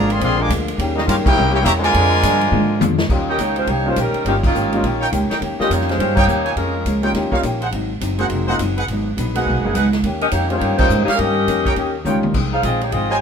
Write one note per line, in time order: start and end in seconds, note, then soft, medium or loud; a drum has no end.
0.00 0.20 G#1 loud
0.00 0.11 A#2 medium
0.00 0.77 D3 medium
0.00 0.11 F3 medium
0.00 0.11 G#3 medium
0.00 0.76 G#3 medium
0.00 3.06 A#3 medium
0.00 0.12 D4 medium
0.00 0.76 F4 medium
0.10 0.20 C4 medium
0.10 0.22 G#4 medium
0.10 0.22 D5 medium
0.10 0.22 F5 medium
0.10 0.22 C6 medium
0.10 ride medium
0.20 0.49 A#1 medium
0.20 0.40 A#2 medium
0.20 0.40 F3 medium
0.20 0.40 G#3 medium
0.20 0.38 C4 medium
0.20 0.41 D4 medium
0.20 0.39 G#4 medium
0.20 0.39 D5 medium
0.20 0.39 F5 medium
0.20 0.39 C6 loud
0.20 kick soft
0.20 ride medium
0.38 0.50 F3 medium
0.38 0.49 G#3 medium
0.38 0.50 D4 medium
0.38 0.51 A#4 medium
0.38 0.51 F5 medium
0.38 0.51 G#5 medium
0.38 0.51 D6 loud
0.48 0.78 D2 loud
0.48 0.68 A#2 medium
0.48 0.68 F3 medium
0.48 0.69 G#3 medium
0.48 0.69 D4 medium
0.48 kick soft
0.48 hi-hat pedal medium
0.48 ride medium
0.68 ride medium
0.77 1.06 D#2 loud
0.77 1.35 C#3 medium
0.77 0.97 D#3 medium
0.77 1.36 G3 medium
0.77 0.98 A#3 medium
0.77 0.98 C#4 medium
0.77 1.36 D#4 medium
0.77 0.98 G4 medium
0.77 kick soft
0.77 ride medium
0.94 1.01 G3 medium
0.94 1.00 A#3 medium
0.94 1.02 C#4 medium
0.94 1.00 D#4 medium
0.94 1.02 G4 medium
0.94 1.03 A#4 medium
0.94 1.02 D#5 medium
0.94 snare soft
1.06 1.24 G2 loud
1.06 1.26 D#3 medium
1.06 1.27 A#3 medium
1.06 1.16 C#4 medium
1.06 1.27 C#4 medium
1.06 1.14 F4 medium
1.06 1.17 G4 medium
1.06 1.27 G4 medium
1.06 1.16 A#4 medium
1.06 1.16 F5 medium
1.06 kick soft
1.06 hi-hat pedal medium
1.06 ride medium
1.22 1.50 A#3 medium
1.22 1.50 E4 medium
1.22 1.52 E4 medium
1.22 1.50 G4 medium
1.22 1.52 A#4 loud
1.22 1.52 C#5 medium
1.22 1.53 G5 loud
1.22 muted upright bass stroke soft
1.22 kick medium
1.27 crash medium
1.35 1.64 C2 loud
1.35 1.55 C3 medium
1.35 1.93 C#3 medium
1.35 1.55 E3 medium
1.35 1.56 A#3 medium
1.35 1.94 C4 medium
1.35 1.56 C#4 medium
1.35 1.94 E4 medium
1.51 1.56 A#3 medium
1.51 1.57 E4 medium
1.51 1.59 E4 medium
1.51 1.57 G4 medium
1.51 1.59 A#4 medium
1.51 1.59 C#5 medium
1.51 1.59 G5 loud
1.60 1.83 C3 medium
1.60 1.70 E3 medium
1.60 1.70 G3 medium
1.60 1.70 A#3 medium
1.60 1.72 G4 loud
1.60 1.73 A#5 loud
1.64 1.93 E2 loud
1.64 1.84 E3 medium
1.64 1.84 A#3 medium
1.64 1.84 C#4 medium
1.64 1.73 C#5 loud
1.64 1.73 E5 loud
1.64 kick soft
1.64 hi-hat pedal medium
1.64 ride medium
1.78 2.93 D3 medium
1.78 2.92 F3 loud
1.78 2.92 G#3 loud
1.83 2.95 F4 loud
1.83 2.95 A#4 loud
1.83 2.95 D5 loud
1.83 2.95 G#5 loud
1.83 ride medium
1.92 2.22 F2 medium
1.92 2.12 A#2 medium
1.92 3.08 D3 medium
1.92 2.13 F3 soft
1.92 3.08 G#3 medium
1.92 2.14 G#3 medium
1.92 2.14 D4 medium
1.92 3.09 F4 medium
1.92 kick soft
1.92 ride medium
2.23 2.51 G2 medium
2.23 2.42 A#2 medium
2.23 2.43 F3 medium
2.23 2.43 G#3 medium
2.23 2.43 D4 medium
2.23 kick soft
2.23 hi-hat pedal medium
2.23 ride medium
2.41 ride soft
2.51 2.80 G#2 medium
2.51 2.71 A#2 medium
2.51 2.71 F3 medium
2.51 2.71 G#3 medium
2.51 2.72 D4 medium
2.51 high tom medium
2.79 3.08 F2 loud
2.79 2.99 A#2 medium
2.79 3.00 F3 medium
2.79 3.00 G#3 medium
2.79 3.00 D4 medium
2.79 hi-hat pedal medium
2.79 high tom medium
2.98 snare medium
3.09 3.37 D#2 medium
3.09 3.28 D#3 soft
3.09 3.26 G3 medium
3.09 3.26 A#3 soft
3.09 3.29 A#3 soft
3.09 3.26 C#4 soft
3.09 3.30 C#4 medium
3.09 3.26 D#4 soft
3.09 3.27 F4 medium
3.09 3.30 G4 medium
3.09 kick medium
3.09 crash medium
3.28 3.39 C#4 medium
3.28 3.65 D#4 medium
3.28 3.39 G4 medium
3.28 3.65 A#4 medium
3.28 3.39 A#4 medium
3.28 3.66 C#5 medium
3.28 3.39 D#5 medium
3.28 3.66 G5 loud
3.38 3.66 C#2 medium
3.38 3.58 D#3 medium
3.38 3.58 A#3 medium
3.38 3.57 A#3 medium
3.38 3.58 C#4 medium
3.38 3.57 D#4 medium
3.38 3.57 G4 medium
3.38 3.59 G4 medium
3.38 3.58 C#5 medium
3.38 kick soft
3.38 hi-hat pedal medium
3.38 ride medium
3.56 3.68 G#3 medium
3.56 3.68 C#4 medium
3.56 3.68 F4 medium
3.56 3.67 C5 medium
3.56 ride soft
3.67 3.95 C2 medium
3.67 3.86 D#3 soft
3.67 3.87 A#3 medium
3.67 3.87 C#4 soft
3.67 3.86 D#4 medium
3.67 3.87 G4 medium
3.67 3.88 G4 medium
3.67 3.87 C#5 medium
3.67 kick soft
3.67 ride medium
3.86 3.95 G3 medium
3.86 3.98 G#3 medium
3.86 3.95 A#3 medium
3.86 3.95 C#4 medium
3.86 3.98 C#4 medium
3.86 3.95 D#4 medium
3.86 3.96 F4 medium
3.86 3.98 F4 medium
3.86 3.98 C5 medium
3.96 4.13 A#1 medium
3.96 4.15 D#3 medium
3.96 4.27 G3 medium
3.96 4.16 A#3 medium
3.96 4.16 C#4 medium
3.96 4.27 D#4 medium
3.96 4.16 G4 medium
3.96 4.27 A#4 medium
3.96 kick soft
3.96 hi-hat pedal medium
3.96 ride medium
4.00 4.26 C#4 medium
4.14 muted upright bass stroke soft
4.14 ride soft
4.25 4.53 G1 medium
4.25 4.45 D#3 soft
4.25 4.35 D#3 medium
4.25 4.41 G3 medium
4.25 4.42 A#3 medium
4.25 4.45 A#3 soft
4.25 4.35 A#3 medium
4.25 4.42 C#4 medium
4.25 4.45 C#4 soft
4.25 4.35 C#4 medium
4.25 4.42 D#4 medium
4.25 4.42 F4 medium
4.25 4.46 G4 soft
4.25 4.36 G4 medium
4.25 kick soft
4.25 ride medium
4.43 5.27 A#3 medium
4.43 5.28 C#4 medium
4.43 5.28 D#4 medium
4.43 5.27 F4 medium
4.43 kick medium
4.43 crash medium
4.54 4.82 G#1 medium
4.54 4.73 D#3 medium
4.54 4.74 A#3 medium
4.54 4.74 C#4 medium
4.54 4.74 G4 medium
4.54 hi-hat pedal medium
4.73 4.82 G3 medium
4.73 4.83 A#3 medium
4.73 4.83 C#4 medium
4.73 4.83 D#4 medium
4.73 4.83 F4 medium
4.73 ride soft
4.83 5.11 A#1 medium
4.83 5.02 D#3 medium
4.83 5.03 A#3 medium
4.83 5.03 C#4 medium
4.83 5.03 G4 medium
4.83 kick soft
4.83 ride medium
5.01 5.09 D#4 loud
5.01 5.09 A#4 medium
5.01 5.08 C#5 medium
5.01 5.09 G5 loud
5.12 5.29 C#2 medium
5.12 5.31 D#3 medium
5.12 5.32 A#3 medium
5.12 5.32 C#4 medium
5.12 5.32 G4 medium
5.12 kick soft
5.12 hi-hat pedal medium
5.12 ride medium
5.30 5.38 D#4 medium
5.30 5.38 A#4 medium
5.30 5.38 C#5 medium
5.30 5.38 G5 medium
5.30 muted upright bass stroke soft
5.30 snare medium
5.30 ride soft
5.39 5.58 D#2 medium
5.39 5.59 D#3 medium
5.39 5.60 A#3 medium
5.39 5.60 C#4 medium
5.39 5.61 G4 medium
5.39 kick soft
5.39 ride medium
5.59 5.97 G3 medium
5.59 5.97 A#3 medium
5.59 5.97 C#4 medium
5.59 5.70 C#4 medium
5.59 5.97 D#4 medium
5.59 5.97 F4 medium
5.59 5.70 G4 medium
5.59 5.70 A#4 medium
5.59 5.70 D#5 loud
5.59 muted upright bass stroke soft
5.59 snare medium
5.70 5.98 F2 medium
5.70 5.89 D#3 medium
5.70 5.90 A#3 medium
5.70 5.89 C#4 medium
5.70 5.90 D#4 medium
5.70 5.90 G4 medium
5.70 5.89 G4 medium
5.70 5.89 C#5 loud
5.70 kick soft
5.70 hi-hat pedal medium
5.70 ride medium
5.81 snare soft
5.89 5.97 G#3 medium
5.89 5.97 C#4 medium
5.89 5.97 F4 medium
5.89 5.97 C5 medium
5.89 snare soft
5.89 ride soft
5.98 6.26 G2 medium
5.98 6.18 D#3 medium
5.98 6.15 G#3 medium
5.98 6.18 A#3 medium
5.98 6.15 C#4 medium
5.98 6.19 C#4 medium
5.98 6.15 F4 medium
5.98 6.19 G4 soft
5.98 6.15 C5 medium
5.98 kick soft
5.98 ride medium
6.16 6.53 A#3 medium
6.16 6.24 D#4 medium
6.16 6.53 D#4 medium
6.16 6.53 G4 medium
6.16 6.24 A#4 medium
6.16 6.53 C#5 loud
6.16 6.24 C#5 medium
6.16 6.24 G5 loud
6.16 kick medium
6.16 crash medium
6.27 6.55 D#2 medium
6.27 6.47 D#3 medium
6.27 6.47 A#3 medium
6.27 6.47 C#4 medium
6.27 6.48 G4 medium
6.27 hi-hat pedal medium
6.45 6.53 F4 medium
6.45 6.53 A#4 medium
6.45 6.53 C#5 medium
6.45 6.53 G#5 medium
6.45 ride soft
6.56 6.84 F2 medium
6.56 6.76 A#2 soft
6.56 6.76 F3 medium
6.56 7.00 G#3 medium
6.56 6.76 G#3 soft
6.56 7.00 C#4 medium
6.56 6.77 C#4 medium
6.56 7.00 F4 medium
6.56 7.01 A#4 medium
6.56 kick soft
6.56 ride medium
6.85 7.13 C#2 medium
6.85 7.05 A#2 medium
6.85 7.05 F3 medium
6.85 7.06 G#3 medium
6.85 7.06 C#4 medium
6.85 kick soft
6.85 hi-hat pedal medium
6.85 ride medium
7.02 7.30 G3 medium
7.02 7.30 A#3 medium
7.02 7.30 C#4 medium
7.02 7.30 D#4 soft
7.02 7.11 D#4 medium
7.02 7.30 F4 medium
7.02 7.11 A#4 medium
7.02 7.11 C#5 medium
7.02 7.11 G5 medium
7.02 ride soft
7.13 7.31 D#2 medium
7.13 7.33 D#3 medium
7.13 7.34 A#3 medium
7.13 7.34 C#4 medium
7.13 7.35 G4 medium
7.13 kick soft
7.13 snare soft
7.13 ride medium
7.31 7.42 G3 medium
7.31 7.42 A#3 medium
7.31 7.42 C#4 medium
7.31 7.39 D#4 medium
7.31 7.42 D#4 medium
7.31 7.42 F4 medium
7.31 7.39 A#4 medium
7.31 7.39 C#5 medium
7.31 7.39 F5 loud
7.31 muted upright bass stroke soft
7.31 kick medium
7.43 7.70 A#1 medium
7.43 7.62 D#3 medium
7.43 7.63 A#3 medium
7.43 7.63 C#4 medium
7.43 7.63 G4 medium
7.43 kick soft
7.43 hi-hat pedal medium
7.43 ride medium
7.62 7.69 D#4 medium
7.62 7.69 G#4 medium
7.62 7.69 C5 medium
7.62 7.69 F#5 medium
7.62 ride soft
7.71 8.00 G#1 medium
7.71 7.91 G#2 medium
7.71 7.91 F#3 medium
7.71 7.92 C4 medium
7.71 7.93 D#4 medium
7.71 kick soft
7.71 ride medium
8.01 8.29 F#1 medium
8.01 8.20 G#2 medium
8.01 8.20 F#3 medium
8.01 8.20 C4 medium
8.01 8.21 D#4 medium
8.01 kick soft
8.01 hi-hat pedal medium
8.01 ride medium
8.19 8.46 G#3 medium
8.19 8.47 A#3 medium
8.19 8.46 C4 medium
8.19 8.26 D#4 medium
8.19 8.46 D#4 medium
8.19 8.46 F#4 medium
8.19 8.26 G#4 medium
8.19 8.26 C5 medium
8.19 8.26 F#5 medium
8.19 ride soft
8.30 8.58 F1 medium
8.30 8.49 G#2 medium
8.30 8.50 F#3 medium
8.30 8.50 C4 medium
8.30 8.50 D#4 medium
8.30 kick soft
8.30 ride medium
8.48 8.58 G#3 medium
8.48 8.58 A#3 medium
8.48 8.58 C4 medium
8.48 8.55 D#4 medium
8.48 8.59 D#4 medium
8.48 8.59 F4 medium
8.48 8.55 G#4 medium
8.48 8.55 C5 medium
8.48 8.55 F#5 loud
8.59 8.87 F#1 medium
8.59 8.78 G#2 medium
8.59 8.79 F#3 medium
8.59 8.79 C4 medium
8.59 8.79 D#4 medium
8.59 kick soft
8.59 hi-hat pedal medium
8.59 ride medium
8.77 8.84 D#4 medium
8.77 8.84 G#4 medium
8.77 8.84 B4 medium
8.77 8.84 F#5 medium
8.77 ride soft
8.88 9.16 G#1 medium
8.88 9.08 G#2 soft
8.88 9.08 F#3 medium
8.88 kick soft
8.88 ride medium
8.92 9.09 B3 medium
8.92 9.09 D#4 medium
9.17 9.45 A#1 medium
9.17 9.36 G#2 medium
9.17 9.36 F#3 medium
9.17 9.37 B3 medium
9.17 9.37 D#4 medium
9.17 kick soft
9.17 hi-hat pedal medium
9.17 ride medium
9.35 9.62 G#3 medium
9.35 9.62 A#3 medium
9.35 9.62 B3 soft
9.35 9.72 D#4 medium
9.35 9.62 D#4 medium
9.35 9.63 F#4 medium
9.35 9.72 G#4 medium
9.35 9.73 B4 medium
9.35 9.72 F#5 medium
9.35 ride medium
9.46 9.55 B1 medium
9.46 9.65 G#2 medium
9.46 9.65 F#3 medium
9.46 9.66 B3 medium
9.46 9.66 D#4 medium
9.46 kick soft
9.55 9.64 G#1 medium
9.64 9.73 F#1 medium
9.64 9.74 G#3 medium
9.64 9.74 A#3 medium
9.64 9.74 B3 medium
9.64 9.74 D#4 medium
9.64 9.74 G#4 medium
9.74 10.02 C#2 medium
9.74 9.93 G#2 medium
9.74 9.94 F#3 medium
9.74 9.94 B3 medium
9.74 9.87 D#4 medium
9.74 9.94 D#4 medium
9.74 9.88 G#4 medium
9.74 9.88 B4 medium
9.74 9.87 F#5 medium
9.74 kick soft
9.74 hi-hat pedal medium
9.74 ride medium
9.93 snare soft
9.93 ride soft
10.03 10.31 D#2 medium
10.03 10.22 D#3 soft
10.03 10.23 A#3 medium
10.03 10.24 C#4 medium
10.03 10.24 G4 medium
10.03 kick soft
10.03 ride medium
10.21 10.27 C#4 medium
10.21 10.27 G4 medium
10.21 10.26 A#4 medium
10.21 10.27 D#5 medium
10.21 ride soft
10.31 10.60 F2 medium
10.31 10.52 D#3 medium
10.31 10.49 A#3 medium
10.31 10.52 A#3 medium
10.31 10.52 C#4 medium
10.31 10.49 D#4 medium
10.31 10.49 G4 medium
10.31 10.53 G4 medium
10.31 10.49 C#5 loud
10.31 kick soft
10.31 hi-hat pedal medium
10.31 ride medium
10.49 10.78 G3 medium
10.49 10.61 G#3 medium
10.49 10.78 A#3 medium
10.49 10.61 C#4 medium
10.49 10.78 C#4 medium
10.49 10.78 D#4 medium
10.49 10.61 F4 medium
10.49 10.78 F4 medium
10.49 10.61 C5 medium
10.49 ride soft
10.58 10.78 G2 medium
10.58 10.76 A#3 medium
10.58 10.76 D#4 medium
10.58 10.76 G4 medium
10.58 10.76 C#5 loud
10.58 kick soft
10.58 ride medium
10.62 10.80 D#3 soft
10.62 10.81 A#3 medium
10.62 10.82 C#4 medium
10.62 10.82 G4 medium
10.77 10.89 G3 medium
10.77 11.04 A#3 medium
10.77 10.89 A#3 medium
10.77 10.90 C#4 medium
10.77 11.04 D#4 medium
10.77 10.87 D#4 medium
10.77 10.90 D#4 medium
10.77 11.03 G4 medium
10.77 10.87 A#4 medium
10.77 11.05 C5 loud
10.77 10.87 C#5 medium
10.77 10.87 G5 loud
10.77 muted upright bass stroke soft
10.77 kick medium
10.77 crash medium
10.81 10.90 F4 medium
10.89 11.06 G#2 medium
10.89 11.09 D#3 medium
10.89 11.10 A#3 medium
10.89 11.10 C#4 medium
10.89 11.10 G4 medium
10.89 hi-hat pedal medium
11.04 11.11 A#3 medium
11.04 11.11 D#4 medium
11.04 11.10 G4 medium
11.04 11.10 C#5 medium
11.04 muted upright bass stroke soft
11.04 snare soft
11.04 ride soft
11.08 11.16 D#4 medium
11.08 11.16 A#4 medium
11.08 11.16 C#5 medium
11.08 11.16 F5 loud
11.14 11.99 C#4 medium
11.14 11.99 G4 medium
11.14 11.99 A#4 medium
11.14 11.99 D#5 medium
11.18 11.47 G2 medium
11.18 11.38 D#3 soft
11.18 11.38 A#3 soft
11.18 11.39 C#4 soft
11.18 11.39 G4 soft
11.18 kick soft
11.18 ride medium
11.47 11.76 F2 medium
11.47 11.67 D#3 medium
11.47 11.67 A#3 medium
11.47 11.67 C#4 medium
11.47 11.68 G4 medium
11.47 kick soft
11.47 hi-hat pedal medium
11.47 ride medium
11.66 11.73 D#4 medium
11.66 11.73 A#4 medium
11.66 11.73 C#5 medium
11.66 11.73 G5 medium
11.66 kick medium
11.66 ride soft
11.76 12.04 D#2 medium
11.76 11.95 D#3 medium
11.76 11.96 A#3 medium
11.76 11.96 C#4 medium
11.76 11.97 G4 medium
11.76 kick soft
11.76 ride medium
12.05 12.33 C#2 medium
12.05 12.25 D#3 medium
12.05 12.35 G3 medium
12.05 12.25 A#3 medium
12.05 12.35 A#3 medium
12.05 12.35 C#4 soft
12.05 12.25 C#4 medium
12.05 12.18 D#4 medium
12.05 12.35 D#4 soft
12.05 12.35 F4 medium
12.05 12.26 G4 medium
12.05 12.18 A#4 medium
12.05 12.18 C#5 medium
12.05 12.18 G5 medium
12.05 hi-hat pedal medium
12.05 high tom soft
12.23 high tom medium
12.34 12.62 C2 medium
12.34 12.53 F2 soft
12.34 12.54 D#3 soft
12.34 12.54 G#3 medium
12.34 12.55 C4 medium
12.34 kick medium
12.34 crash medium
12.53 12.63 D#4 medium
12.53 12.63 G#4 medium
12.53 12.63 C5 medium
12.53 12.63 F5 loud
12.63 12.91 A#1 medium
12.63 12.82 F2 medium
12.63 12.83 D#3 medium
12.63 12.83 G#3 medium
12.63 12.83 C4 medium
12.63 12.81 C4 medium
12.63 12.80 F4 medium
12.63 12.81 G#4 medium
12.63 12.81 D#5 medium
12.63 kick soft
12.63 hi-hat pedal medium
12.63 ride medium
12.81 12.93 A#3 medium
12.81 12.93 D#4 medium
12.81 12.93 G4 medium
12.81 12.93 C#5 medium
12.81 ride soft
12.92 13.20 G#1 medium
12.92 13.12 F2 medium
12.92 13.12 D#3 medium
12.92 13.13 G#3 medium
12.92 13.10 C4 medium
12.92 13.10 F4 medium
12.92 13.10 G#4 medium
12.92 13.10 D#5 medium
12.92 kick soft
12.92 ride medium
12.97 13.14 C4 medium
13.10 13.20 A#3 medium
13.10 13.21 D#4 medium
13.10 13.18 F4 medium
13.10 13.21 G4 medium
13.10 13.17 C5 medium
13.10 13.21 C#5 medium
13.10 13.18 D#5 medium
13.10 13.18 G#5 loud